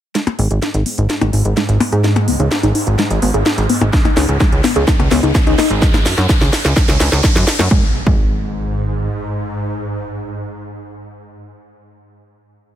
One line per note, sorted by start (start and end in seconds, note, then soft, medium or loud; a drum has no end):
0.15 5.87 G#2 medium
0.15 0.26 G#3 medium
0.15 snare soft
0.15 closed hi-hat medium
0.15 riser medium
0.27 closed hi-hat medium
0.27 percussion blips medium
0.39 0.48 G#1 medium
0.39 0.50 B3 medium
0.39 open hi-hat loud
0.51 0.60 G#1 medium
0.51 0.58 G#4 medium
0.51 closed hi-hat medium
0.62 0.70 D#4 medium
0.62 snare soft
0.62 closed hi-hat medium
0.74 0.83 G#1 medium
0.74 closed hi-hat medium
0.86 0.94 B3 medium
0.86 open hi-hat loud
0.98 1.07 G#1 medium
0.98 1.03 D#4 medium
0.98 closed hi-hat medium
1.10 snare medium
1.10 closed hi-hat medium
1.21 1.31 G#1 medium
1.21 1.26 D#4 loud
1.21 closed hi-hat medium
1.21 percussion blips medium
1.33 1.43 G#1 loud
1.33 1.45 D#4 medium
1.33 open hi-hat loud
1.45 1.54 G#1 medium
1.45 closed hi-hat medium
1.57 1.68 G#3 medium
1.57 snare medium
1.57 closed hi-hat medium
1.69 1.78 G#1 medium
1.69 closed hi-hat medium
1.80 1.92 B3 medium
1.80 open hi-hat loud
1.80 percussion blips medium
1.92 2.29 G#2 medium
1.92 2.00 G#4 medium
1.92 closed hi-hat medium
2.04 2.12 D#4 medium
2.04 snare medium
2.04 closed hi-hat medium
2.16 closed hi-hat medium
2.16 percussion blips medium
2.28 2.37 C#2 medium
2.28 2.36 B3 medium
2.28 open hi-hat loud
2.40 2.49 C#2 medium
2.40 2.44 D#4 medium
2.40 closed hi-hat medium
2.51 snare medium
2.51 closed hi-hat medium
2.63 2.72 G#1 medium
2.63 2.68 D#4 loud
2.63 closed hi-hat medium
2.75 2.86 D#4 medium
2.75 open hi-hat loud
2.87 2.96 G#1 medium
2.87 closed hi-hat medium
2.99 3.10 G#3 medium
2.99 snare medium
2.99 closed hi-hat medium
3.11 3.20 G#1 medium
3.11 closed hi-hat medium
3.22 3.32 G#1 medium
3.22 3.34 B3 medium
3.22 open hi-hat loud
3.34 3.43 G#1 medium
3.34 3.42 G#4 medium
3.34 closed hi-hat medium
3.46 3.54 D#4 medium
3.46 snare medium
3.46 closed hi-hat medium
3.58 3.67 G#1 medium
3.58 closed hi-hat medium
3.69 3.77 B3 medium
3.69 open hi-hat loud
3.81 3.91 G#1 medium
3.81 3.86 D#4 medium
3.81 closed hi-hat medium
3.81 percussion blips medium
3.93 kick loud
3.93 snare medium
3.93 closed hi-hat medium
4.05 4.10 D#4 loud
4.05 closed hi-hat medium
4.05 percussion blips medium
4.17 4.26 C#2 medium
4.17 4.28 D#4 medium
4.17 snare medium
4.17 open hi-hat loud
4.29 4.38 C#2 medium
4.29 closed hi-hat medium
4.40 4.52 G#3 medium
4.40 kick loud
4.40 snare medium
4.40 closed hi-hat medium
4.52 4.61 C#2 medium
4.52 closed hi-hat medium
4.64 4.75 B3 medium
4.64 snare medium
4.64 open hi-hat loud
4.76 4.85 C#2 medium
4.76 4.84 G#4 medium
4.76 closed hi-hat medium
4.88 4.95 D#4 medium
4.88 kick loud
4.88 snare medium
4.88 closed hi-hat medium
4.99 5.09 C#2 medium
4.99 closed hi-hat medium
4.99 percussion blips medium
5.11 5.21 C#2 loud
5.11 5.19 B3 medium
5.11 snare medium
5.11 open hi-hat loud
5.23 5.32 C#2 medium
5.23 5.28 D#4 medium
5.23 closed hi-hat medium
5.35 kick loud
5.35 snare medium
5.35 closed hi-hat medium
5.47 5.56 C#2 medium
5.47 5.51 D#4 loud
5.47 closed hi-hat medium
5.58 5.70 D#4 medium
5.58 snare medium
5.58 open hi-hat loud
5.58 percussion blips medium
5.70 6.07 G#1 medium
5.70 closed hi-hat medium
5.82 kick loud
5.82 snare medium
5.82 closed hi-hat medium
5.94 snare medium
5.94 closed hi-hat medium
5.94 percussion blips medium
6.06 6.15 F#2 loud
6.06 snare medium
6.06 open hi-hat loud
6.18 6.27 F#2 medium
6.18 snare medium
6.18 closed hi-hat medium
6.29 kick loud
6.29 snare loud
6.29 closed hi-hat medium
6.41 6.50 C#2 medium
6.41 snare medium
6.41 closed hi-hat medium
6.53 snare loud
6.53 open hi-hat loud
6.65 6.74 C#2 medium
6.65 snare medium
6.65 closed hi-hat medium
6.77 kick loud
6.77 snare loud
6.77 closed hi-hat medium
6.88 6.98 C#2 medium
6.88 snare medium
6.88 closed hi-hat medium
7.00 7.10 C#2 loud
7.00 snare loud
7.00 open hi-hat loud
7.12 7.21 C#2 medium
7.12 snare medium
7.12 closed hi-hat medium
7.24 kick loud
7.24 snare loud
7.24 closed hi-hat medium
7.36 7.45 F#2 medium
7.36 snare loud
7.36 closed hi-hat medium
7.47 snare loud
7.47 open hi-hat loud
7.59 7.69 F#2 medium
7.59 snare loud
7.59 closed hi-hat medium
7.59 percussion blips medium
7.71 7.84 G#1 loud
7.71 10.73 G#2 medium
7.71 7.84 G#3 medium
7.71 kick loud
7.71 impact medium
8.07 9.09 G#1 loud
8.07 8.20 G#3 medium
8.07 kick loud